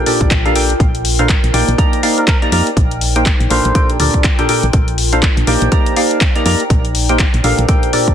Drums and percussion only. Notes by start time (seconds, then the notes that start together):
0.06 open hi-hat
0.21 kick, closed hi-hat
0.31 kick, clap, closed hi-hat
0.46 closed hi-hat
0.56 open hi-hat
0.70 closed hi-hat
0.80 kick, closed hi-hat
0.95 closed hi-hat
1.05 open hi-hat
1.19 closed hi-hat
1.29 kick, clap, closed hi-hat
1.44 closed hi-hat
1.54 open hi-hat
1.69 closed hi-hat
1.78 kick, closed hi-hat
1.93 closed hi-hat
2.03 open hi-hat
2.18 closed hi-hat
2.28 kick, clap, closed hi-hat
2.42 closed hi-hat
2.52 open hi-hat
2.67 closed hi-hat
2.77 kick, closed hi-hat
2.91 closed hi-hat
3.01 open hi-hat
3.16 closed hi-hat
3.26 kick, clap, closed hi-hat
3.41 closed hi-hat
3.51 open hi-hat
3.65 closed hi-hat
3.75 kick, closed hi-hat
3.90 closed hi-hat
4.00 open hi-hat
4.14 kick
4.24 kick, clap, closed hi-hat
4.39 closed hi-hat
4.49 open hi-hat
4.63 closed hi-hat
4.73 kick, closed hi-hat
4.88 closed hi-hat
4.98 open hi-hat
5.13 closed hi-hat
5.23 kick, clap, closed hi-hat
5.37 closed hi-hat
5.47 open hi-hat
5.62 closed hi-hat
5.72 kick, closed hi-hat
5.86 closed hi-hat
5.96 open hi-hat
6.11 closed hi-hat
6.21 kick, clap, closed hi-hat
6.36 closed hi-hat
6.46 open hi-hat
6.60 closed hi-hat
6.70 kick, closed hi-hat
6.85 closed hi-hat
6.95 open hi-hat
7.09 closed hi-hat
7.19 kick, clap, closed hi-hat
7.34 closed hi-hat
7.44 open hi-hat
7.59 closed hi-hat
7.69 kick, closed hi-hat
7.83 closed hi-hat
7.93 open hi-hat
8.08 kick, closed hi-hat